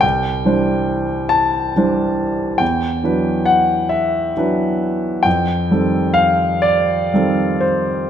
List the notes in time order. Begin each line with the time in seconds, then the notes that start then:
0.01 C2 G5
0.45 E3 G3 D4 C5
1.29 A5
1.76 E3 G3 D4 C5
2.58 E2 G5
3.04 E3 F#3 D4 B4
3.46 F#5
3.89 E5
4.37 E3 F#3 D4 B4
5.23 F2 G5
5.71 D#3 G3 C4 A4
6.14 F5
6.62 D5
7.14 D#3 G3 C4 A4
7.61 C5